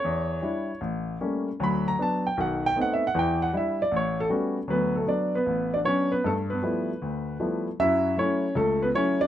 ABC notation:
X:1
M:4/4
L:1/8
Q:"Swing" 1/4=155
K:D
V:1 name="Grand piano"
c4 z4 | b _b a g f g (3f e f | g f e d c A z2 | [B,B] [A,A] [Dd] [B,B]2 [Dd] [Cc] [B,B] |
[A,A] [B,B]6 z | [Ee]2 [Cc]2 [A,A] [B,B] [Cc] [Dd] |]
V:2 name="Grand piano"
E,,2 [G,DE] z A,,,2 [G,A,_B,C] z | [D,,F,]2 [F,B,D] z [B,,,^D,]2 [A,B,=C^D] z | [E,,E,]2 [G,DE] z A,,,2 [G,A,B,CF] z | [D,,F,]2 [F,B,D] z A,,,2 [F,B,D] z |
G,,2 [=F,G,A,B,E] z D,,2 [F,G,A,B,E] z | [F,,F,]2 [F,A,E] z C,,2 [F,A,E] z |]